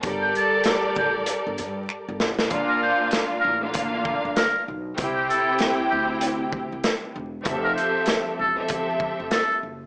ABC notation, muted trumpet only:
X:1
M:4/4
L:1/16
Q:"Swing 16ths" 1/4=97
K:Bblyd
V:1 name="Muted trumpet"
z g a2 z2 g z8 z | z B c2 z2 B z4 z B2 z2 | z G A2 z2 G z8 z | z B c2 z2 A z4 z A2 z2 |]